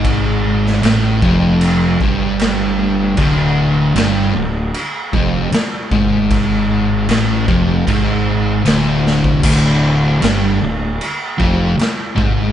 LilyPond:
<<
  \new Staff \with { instrumentName = "Distorted electric guitar" } { \clef bass \time 4/4 \key c \dorian \tempo 4 = 77 gis,4 a,8 f,4 g,4. | d,4 g,8 d,8 r8 f,8 r8 gis,8~ | gis,4 a,8 f,8 gis,4 d,4 | d,4 g,8 d,8 r8 f,8 r8 gis,8 | }
  \new Staff \with { instrumentName = "Fingered electric bass" } { \clef bass \time 4/4 \key c \dorian gis,,4 a,,8 f,,4 g,,4. | d,,4 g,,8 d,,8 r8 f,,8 r8 gis,,8~ | gis,,4 a,,8 f,,8 gis,,4 d,,4 | d,,4 g,,8 d,,8 r8 f,,8 r8 gis,,8 | }
  \new DrumStaff \with { instrumentName = "Drums" } \drummode { \time 4/4 <cymc bd>8. sn16 <cymc sn>8 bd8 cymc8 bd8 <cymc sn>4 | <cymc bd>4 <cymc sn>4 cymc8 bd8 <cymc sn>8 bd8 | <cymc bd>4 <cymc sn>8 bd8 <cymc bd>4 <cymc sn>8 sn16 bd16 | <cymc bd>4 <cymc sn>4 cymc8 bd8 <cymc sn>8 bd8 | }
>>